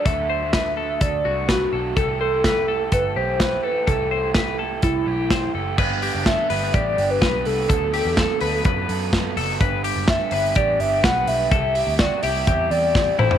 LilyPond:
<<
  \new Staff \with { instrumentName = "Soft synth lead" } { \time 4/4 \key g \major \tempo 4 = 126 e''2 d''4 fis'4 | a'8 a'4. b'8 c''4 b'8 | a'4. r8 e'4. r8 | r4 e''4 d''8. b'8. a'8~ |
a'2.~ a'8 r8 | r4 e''4 d''8 e''8 fis''8 e''8~ | e''4 d''8 e''4 d''4 c''8 | }
  \new Staff \with { instrumentName = "Clean electric guitar" } { \time 4/4 \key g \major a'8 c''8 b'8 a'8 a'8 fis'8 b'8 a'8 | a'8 c''8 b'8 a'8 a'8 g'8 b'8 a'8 | a'8 c''8 b'8 a'8 a'8 g'8 c''8 a'8 | b'8 g'8 a'8 b'8 g'4 b'4 |
a'8 g'8 a'8 b'8 b'4. a'8 | b'8 g'8 a'8 b'8 g'4 b'4 | a'8 g'8 fis'8 g'8 g'4. e'8 | }
  \new Staff \with { instrumentName = "Overdriven electric guitar" } { \time 4/4 \key g \major <d fis a d' fis'>8. <a d' fis'>4.~ <a d' fis'>16 <fis a d' fis'>8 <fis a d' fis'>8 <fis a d' fis'>8 | <c e a e' g'>8. <a e' g'>4.~ <a e' g'>16 <e a e' g'>8 <e a e' g'>8 <e a e' g'>8 | <c e a e' g'>8. <a e' g'>4.~ <a e' g'>16 <e a e' g'>8 <e a e' g'>8 <e a e' g'>8 | <g, d g b d' g'>4. <g b d' g'>4 <g b d' g'>8 <g b d' g'>8 <g b d' g'>8 |
<d fis b fis' a'>4. <fis b fis' a'>4 <fis b fis' a'>8 <fis b fis' a'>8 <fis b fis' a'>8 | <g, d g b d' g'>4. <g b d' g'>4 <g b d' g'>8 <g b d' g'>8 <g b d' g'>8 | <c g c' e' g'>4. <g c' e' g'>4 <g c' e' g'>8 <g c' e' g'>8 <g c' e' g'>8 | }
  \new Staff \with { instrumentName = "Picked electric bass" } { \clef bass \time 4/4 \key g \major d,2 d,8 c,4 b,,8 | c,2 g,,8 b,,4 r8 | c,2 c,8 b,,4 fis,,8 | g,,8. fis,,8 r16 g,,8 a,,8 g,,8 b,,8 c,8 |
d,8. e,8 r16 d,8 fis,8 fis,4 fis,,8 | g,,8. fis,,8 r16 g,,8 a,,8 g,,8 b,,8 b,,8 | c,8. d,8 r16 c,8 e,8 e,4 a,,8 | }
  \new DrumStaff \with { instrumentName = "Drums" } \drummode { \time 4/4 <hh bd>4 <hh bd sn>4 <hh bd>4 <hh bd sn>4 | <hh bd>4 <hh bd sn>4 <hh bd>4 <hh bd sn>4 | <hh bd>4 <hh bd sn>4 <hh bd>4 <hh bd sn>4 | <cymc bd>8 hho8 <hh bd sn>8 hho8 <hh bd>8 hho8 <hh bd sn>8 hho8 |
<hh bd>8 hho8 <hh bd sn>8 hho8 <hh bd>8 hho8 <hh bd sn>8 hho8 | <hh bd>8 hho8 <hh bd sn>8 hho8 <hh bd>8 hho8 <hh bd sn>8 hho8 | <hh bd>8 hho8 <hh bd sn>8 hho8 <hh bd>8 hho8 <bd sn>8 toml16 tomfh16 | }
>>